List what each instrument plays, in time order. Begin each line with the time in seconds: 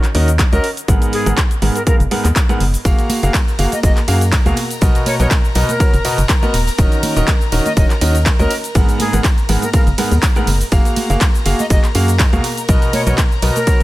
0.04 clap, closed hi-hat, cabasa
0.15 fm bass D#2, grand piano D#3 C#4 F#4 A#4 D#5, open hi-hat
0.28 closed hi-hat, cabasa
0.39 kick, clap, closed hi-hat, cabasa
0.53 fm bass C#2, grand piano C#4 F#4 A#4 D#5, flute A#4, closed hi-hat, cabasa
0.64 open hi-hat
0.77 closed hi-hat, cabasa
0.88 fm bass G#1, grand piano G#2 B3 G#4 A#4 F#5, kick, closed hi-hat, cabasa
1.02 closed hi-hat, cabasa
1.13 flute G#4, open hi-hat
1.26 fm bass G#1, grand piano G#2 B3 G#4 A#4 F#5, closed hi-hat, cabasa
1.38 kick, clap, closed hi-hat, cabasa
1.51 closed hi-hat, cabasa
1.62 fm bass G#1, grand piano G#2 B3 G#4 A#4 F#5, open hi-hat
1.76 flute A#4, closed hi-hat, cabasa
1.87 grand piano G#2 B3 G#4 A#4 F5, flute A#4, kick, closed hi-hat, cabasa
2.00 fm bass F#1, closed hi-hat, cabasa
2.11 grand piano G#2 B3 G#4 A#4 F#5, open hi-hat
2.25 fm bass D#2, clap, closed hi-hat, cabasa
2.36 kick, clap, closed hi-hat, cabasa
2.49 grand piano G#2 B3 G#4 A#4 F#5, closed hi-hat, cabasa
2.60 fm bass F#1, open hi-hat
2.74 open hi-hat, cabasa
2.85 fm bass F#1, grand piano A#3 F#4 G#4 F5, violin section A#4 A#5, kick, closed hi-hat, ride, tambourine, cabasa
2.98 closed hi-hat, tambourine, cabasa
3.09 open hi-hat, ride, tambourine, high conga
3.23 fm bass F#1, grand piano A#3 F#4 G#4 F5, closed hi-hat, tambourine, cabasa
3.34 kick, clap, closed hi-hat, ride, tambourine, cabasa
3.48 tambourine, cabasa
3.59 fm bass F#1, grand piano A#3 F#4 G#4 F5, open hi-hat, ride, tambourine
3.72 flute D#5, closed hi-hat, tambourine, high conga, cabasa
3.83 fm bass F#1, grand piano A#3 F#4 G#4 D#5, flute D#5, kick, closed hi-hat, ride, tambourine, cabasa
3.97 clap, closed hi-hat, tambourine, cabasa
4.08 fm bass F#2, grand piano A#3 F#4 G#4 F5, open hi-hat, ride, tambourine
4.21 closed hi-hat, tambourine, cabasa
4.33 kick, clap, closed hi-hat, ride, tambourine, cabasa
4.45 fm bass C#2, grand piano B2 A#3 F#4 G#4 F5, closed hi-hat, tambourine, high conga, cabasa
4.57 open hi-hat, ride, tambourine
4.71 closed hi-hat, tambourine, cabasa
4.81 fm bass B1, grand piano B2 B3 F#4 A#4 D#5, kick, closed hi-hat, ride, tambourine, cabasa
4.95 closed hi-hat, tambourine, cabasa
5.06 flute C#5, open hi-hat, ride, tambourine, high conga
5.20 fm bass B1, grand piano B2 B3 F#4 A#4 D#5, flute C#5, closed hi-hat, tambourine, cabasa
5.31 kick, clap, closed hi-hat, ride, tambourine, cabasa
5.44 tambourine, cabasa
5.55 fm bass B1, grand piano B2 B3 F#4 A#4 D#5, open hi-hat, ride, tambourine
5.69 flute A#4, closed hi-hat, tambourine, high conga, cabasa
5.80 grand piano B2 B3 F#4 A#4 C#5, kick, closed hi-hat, ride, tambourine, cabasa
5.93 fm bass F#1, closed hi-hat, tambourine, cabasa
6.05 grand piano B2 B3 F#4 A#4 D#5, open hi-hat, ride, tambourine
6.18 fm bass F#1, closed hi-hat, tambourine, cabasa
6.29 kick, clap, closed hi-hat, ride, tambourine, cabasa
6.42 grand piano B3 F#4 A#4 D#5, closed hi-hat, tambourine, high conga, cabasa
6.54 fm bass D#1, open hi-hat, ride, tambourine
6.67 open hi-hat, tambourine, cabasa
6.78 fm bass D#1, grand piano D#3 C#4 F#4 A#4 D#5, kick, closed hi-hat, ride, tambourine, cabasa
6.92 closed hi-hat, tambourine, cabasa
7.03 open hi-hat, ride, tambourine, high conga
7.16 fm bass D#1, grand piano D#3 C#4 F#4 A#4 D#5, closed hi-hat, tambourine, cabasa
7.27 kick, clap, closed hi-hat, ride, tambourine, cabasa
7.41 tambourine, cabasa
7.52 fm bass D#1, grand piano D#3 C#4 F#4 A#4 D#5, open hi-hat, ride, tambourine
7.66 flute D#5, closed hi-hat, tambourine, high conga, cabasa
7.77 fm bass D#1, grand piano D#3 C#4 F#4 A#4 C#5, flute D#5, kick, closed hi-hat, ride, tambourine, cabasa
7.90 clap, closed hi-hat, tambourine, cabasa
8.01 fm bass D#2, grand piano D#3 C#4 F#4 A#4 D#5, open hi-hat, ride, tambourine
8.15 closed hi-hat, tambourine, cabasa
8.26 kick, clap, closed hi-hat, ride, tambourine, cabasa
8.39 fm bass C#2, grand piano C#4 F#4 A#4 D#5, flute A#4, closed hi-hat, tambourine, high conga, cabasa
8.51 open hi-hat, ride, tambourine
8.64 closed hi-hat, tambourine, cabasa
8.75 fm bass G#1, grand piano G#2 B3 G#4 A#4 F#5, kick, closed hi-hat, ride, tambourine, cabasa
8.89 closed hi-hat, tambourine, cabasa
9.00 flute G#4, open hi-hat, ride, tambourine, high conga
9.13 fm bass G#1, grand piano G#2 B3 G#4 A#4 F#5, closed hi-hat, tambourine, cabasa
9.24 kick, clap, closed hi-hat, ride, tambourine, cabasa
9.38 closed hi-hat, tambourine, cabasa
9.49 fm bass G#1, grand piano G#2 B3 G#4 A#4 F#5, open hi-hat, ride, tambourine
9.62 flute A#4, closed hi-hat, tambourine, high conga, cabasa
9.73 grand piano G#2 B3 G#4 A#4 F5, flute A#4, kick, closed hi-hat, ride, tambourine, cabasa
9.87 fm bass F#1, closed hi-hat, tambourine, cabasa
9.98 grand piano G#2 B3 G#4 A#4 F#5, open hi-hat, ride, tambourine
10.12 fm bass D#2, closed hi-hat, tambourine, cabasa
10.23 kick, clap, closed hi-hat, ride, tambourine, cabasa
10.35 grand piano G#2 B3 G#4 A#4 F#5, closed hi-hat, tambourine, high conga, cabasa
10.47 fm bass F#1, open hi-hat, ride, tambourine
10.61 open hi-hat, tambourine, cabasa
10.72 fm bass F#1, grand piano A#3 F#4 G#4 F5, violin section A#4 A#5, kick, closed hi-hat, ride, tambourine, cabasa
10.85 closed hi-hat, tambourine, cabasa
10.96 open hi-hat, ride, tambourine, high conga
11.10 fm bass F#1, grand piano A#3 F#4 G#4 F5, closed hi-hat, tambourine, cabasa
11.21 kick, clap, closed hi-hat, ride, tambourine, cabasa
11.34 tambourine, cabasa
11.46 fm bass F#1, grand piano A#3 F#4 G#4 F5, open hi-hat, ride, tambourine
11.59 flute D#5, closed hi-hat, tambourine, high conga, cabasa
11.70 fm bass F#1, grand piano A#3 F#4 G#4 D#5, flute D#5, kick, closed hi-hat, ride, tambourine, cabasa
11.83 clap, closed hi-hat, tambourine, cabasa
11.95 fm bass F#2, grand piano A#3 F#4 G#4 F5, open hi-hat, ride, tambourine
12.08 closed hi-hat, tambourine, cabasa
12.19 kick, clap, closed hi-hat, ride, tambourine, cabasa
12.33 fm bass C#2, grand piano B2 A#3 F#4 G#4 F5, closed hi-hat, tambourine, high conga, cabasa
12.44 open hi-hat, ride, tambourine
12.57 closed hi-hat, tambourine, cabasa
12.68 fm bass B1, grand piano B2 B3 F#4 A#4 D#5, kick, closed hi-hat, ride, tambourine, cabasa
12.82 closed hi-hat, tambourine, cabasa
12.93 flute C#5, open hi-hat, ride, tambourine, high conga
13.07 fm bass B1, grand piano B2 B3 F#4 A#4 D#5, flute C#5, closed hi-hat, tambourine, cabasa
13.18 kick, clap, closed hi-hat, ride, tambourine, cabasa
13.32 tambourine, cabasa
13.42 fm bass B1, grand piano B2 B3 F#4 A#4 D#5, open hi-hat, ride, tambourine
13.56 flute A#4, closed hi-hat, tambourine, high conga, cabasa
13.67 grand piano B2 B3 F#4 A#4 C#5, kick, closed hi-hat, ride, tambourine, cabasa